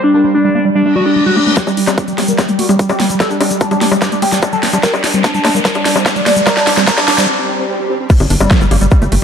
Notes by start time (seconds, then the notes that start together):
Already playing: G3
0.04 D4
0.14 A#3 D4
0.24 G3 A#3
0.34 A#3 D4
0.45 G3 D4
0.55 A#3 D4
0.65 G3
0.75 G3 D4, reverse cymbal
0.85 A3 D4
0.96 G3 D4 F#4
1.06 D4 G4
1.16 G3 D4
1.26 G3 F#4
1.36 A3 D4
1.47 A3 D4
1.56 G3 G4, kick, snare, closed hi-hat, riser, shaker
1.67 G3, high bongo, shaker
1.77 G3 D4, open hi-hat
1.87 G3 C4, snare, high bongo, shaker
1.98 G3 A#3 C4, kick, closed hi-hat, shaker
2.08 G3, closed hi-hat, shaker
2.18 G3 A#3, snare, open hi-hat, high bongo
2.28 G3 A#3, closed hi-hat, shaker
2.38 G3 A#3, kick, snare, closed hi-hat, high bongo, shaker
2.48 G3 A3, closed hi-hat, shaker
2.59 A3 F#4, open hi-hat
2.69 G3, high bongo, shaker
2.79 G3, kick, closed hi-hat, shaker
2.89 G3 G4, closed hi-hat, high bongo, shaker
3.00 G3 A#3, snare, open hi-hat
3.10 G3, closed hi-hat, shaker
3.20 G3 A4, kick, snare, closed hi-hat, high bongo, shaker
3.30 G3 D4, shaker
3.41 D4, open hi-hat, high bongo
3.50 G3, closed hi-hat, shaker
3.61 A#3 D4, kick, closed hi-hat, shaker
3.71 G3 D4, closed hi-hat, high bongo, shaker
3.81 A#3 D4, snare, open hi-hat
3.92 G3, closed hi-hat, high bongo, shaker
4.02 G3 D4, kick, snare, closed hi-hat, shaker
4.12 A3 D4, closed hi-hat, shaker
4.22 A3 G4, open hi-hat, high bongo
4.32 G3 D4, snare, shaker
4.43 D4, kick, closed hi-hat, high bongo, shaker
4.53 G3 A4, closed hi-hat, shaker
4.63 A#3 D4, snare, open hi-hat
4.73 G3 D4, closed hi-hat, high bongo, shaker
4.83 G3 A#4, kick, snare, closed hi-hat, shaker
4.94 D4, high bongo, shaker
5.04 D4, snare, open hi-hat
5.13 G3 C4, closed hi-hat, shaker
5.24 C4 D4, kick, snare, closed hi-hat, high bongo, shaker
5.34 G3 D4, closed hi-hat, shaker
5.45 A#3 D4, snare, open hi-hat, high bongo
5.55 G3 A#3, closed hi-hat, shaker
5.65 G3 A#4, kick, snare, closed hi-hat, shaker
5.74 D4, closed hi-hat, high bongo, shaker
5.85 D4, snare, open hi-hat
5.96 G3 C4, closed hi-hat, high bongo, shaker
6.06 A#3 C4 D4, kick, snare, closed hi-hat, shaker
6.16 G3 D4, closed hi-hat, shaker
6.26 A#3 D4, snare, open hi-hat, high bongo
6.36 G3 A#3, closed hi-hat, shaker
6.47 G3 A#4, kick, snare, closed hi-hat, high bongo, shaker
6.57 D4, snare, shaker
6.67 D4, snare, open hi-hat
6.77 G3 C4, snare, high bongo, shaker
6.87 G3 A#4, kick, snare, closed hi-hat, shaker
6.97 D4, snare, closed hi-hat, high bongo, shaker
7.08 D4, snare, open hi-hat
7.18 G3 C4, snare, shaker
7.28 C4, swell
7.39 C4
7.49 C4
7.59 C4
7.69 C4
7.79 C4
7.90 C4
8.00 C4
8.10 G3, kick, closed hi-hat, crash, impact, shaker
8.20 G1, closed hi-hat, high bongo, shaker
8.30 G1 D4, open hi-hat
8.40 G1 G3, high bongo, shaker
8.51 A#3, kick, snare, closed hi-hat, shaker
8.61 G1 G3, closed hi-hat, shaker
8.71 G1 A#3, open hi-hat, high bongo
8.81 G1 G3, closed hi-hat, shaker
8.91 G3, kick, closed hi-hat, high bongo, shaker
9.02 G1 A3, closed hi-hat, shaker
9.12 G1 A3, open hi-hat